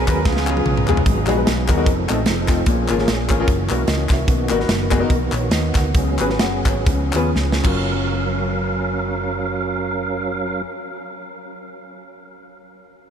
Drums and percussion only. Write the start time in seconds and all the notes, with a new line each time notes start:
0.08 kick, clap, closed hi-hat
0.25 kick, snare
0.37 snare
0.47 clap
0.57 high tom
0.66 mid tom
0.77 mid tom
0.87 clap, floor tom
0.97 floor tom
1.06 kick, closed hi-hat
1.27 clap, closed hi-hat
1.47 snare, closed hi-hat
1.68 kick, clap, closed hi-hat
1.86 kick, closed hi-hat
2.09 clap, closed hi-hat
2.26 snare, closed hi-hat
2.48 kick, snare, clap, closed hi-hat
2.66 kick, closed hi-hat
2.88 clap, closed hi-hat
2.99 snare
3.08 snare, closed hi-hat
3.29 kick, clap, closed hi-hat
3.48 kick, closed hi-hat
3.69 clap, closed hi-hat
3.88 snare, closed hi-hat
4.09 kick, snare, clap, closed hi-hat
4.28 kick, closed hi-hat
4.49 clap, closed hi-hat
4.60 snare
4.69 snare, closed hi-hat
4.91 kick, clap, closed hi-hat
5.10 kick, closed hi-hat
5.32 clap, closed hi-hat
5.51 snare, closed hi-hat
5.75 kick, snare, clap, closed hi-hat
5.95 kick, closed hi-hat
6.19 clap, closed hi-hat
6.30 snare
6.39 snare, closed hi-hat
6.66 kick, clap, closed hi-hat
6.87 kick, closed hi-hat
7.13 clap, closed hi-hat
7.36 snare
7.52 snare
7.64 kick, clap, crash